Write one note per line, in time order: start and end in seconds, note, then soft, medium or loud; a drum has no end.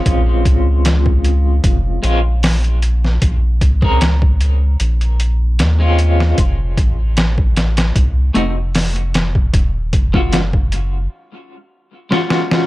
0.00 1.98 G#3 medium
0.00 1.99 C4 medium
0.00 2.00 C#4 medium
0.00 2.00 F4 medium
0.06 0.47 A#1 loud
0.06 kick loud
0.06 closed hi-hat medium
0.45 1.60 C#2 medium
0.45 kick medium
0.45 closed hi-hat medium
0.85 snare loud
0.85 closed hi-hat medium
1.06 kick medium
1.25 closed hi-hat medium
1.64 1.99 F1 loud
1.64 kick loud
1.64 closed hi-hat medium
2.03 3.19 A#1 loud
2.03 2.18 G#3 medium
2.03 2.19 C4 medium
2.03 2.19 C#4 medium
2.03 2.19 F4 loud
2.03 closed hi-hat medium
2.43 snare loud
2.43 open hi-hat medium
2.64 closed hi-hat soft
2.82 closed hi-hat medium
3.05 snare soft
3.22 3.63 A#1 loud
3.22 kick loud
3.22 closed hi-hat medium
3.61 4.76 C#2 medium
3.61 kick medium
3.61 closed hi-hat medium
3.82 4.04 G#3 medium
3.82 4.05 C4 medium
3.82 4.05 C#4 medium
3.82 4.05 A#4 loud
3.82 kick medium
4.01 snare loud
4.01 closed hi-hat medium
4.22 kick medium
4.41 closed hi-hat medium
4.80 5.61 A#1 medium
4.80 closed hi-hat medium
5.01 closed hi-hat soft
5.20 closed hi-hat medium
5.59 6.34 D#2 medium
5.59 snare loud
5.59 closed hi-hat medium
5.80 6.36 G#3 medium
5.80 6.36 C4 medium
5.80 6.36 C#4 medium
5.80 6.37 F4 medium
5.99 closed hi-hat medium
6.20 snare soft
6.38 6.79 F1 medium
6.38 kick loud
6.38 closed hi-hat medium
6.77 7.92 A1 medium
6.77 kick medium
6.77 closed hi-hat medium
7.17 snare loud
7.17 closed hi-hat medium
7.38 kick medium
7.56 snare medium
7.56 closed hi-hat medium
7.77 snare loud
7.77 closed hi-hat medium
7.96 8.31 C2 loud
7.96 kick loud
7.96 closed hi-hat medium
8.34 9.50 F1 loud
8.34 8.50 A3 loud
8.34 8.50 C4 medium
8.34 8.51 D#4 medium
8.34 8.51 F#4 medium
8.34 closed hi-hat medium
8.75 snare loud
8.75 open hi-hat medium
8.96 closed hi-hat soft
9.14 snare medium
9.14 closed hi-hat medium
9.35 kick medium
9.54 9.94 D#1 loud
9.54 kick loud
9.54 closed hi-hat medium
9.93 11.08 F#1 medium
9.93 kick loud
9.93 closed hi-hat medium
10.14 10.36 G#3 medium
10.14 10.36 C#4 medium
10.14 10.36 F4 medium
10.14 10.37 F#4 loud
10.14 kick medium
10.33 snare loud
10.33 closed hi-hat medium
10.53 kick medium
10.72 closed hi-hat medium
12.11 12.67 G#3 medium
12.11 12.67 C#4 medium
12.11 12.67 F4 medium
12.11 12.67 F#4 loud
12.11 snare medium
12.30 snare medium
12.51 snare medium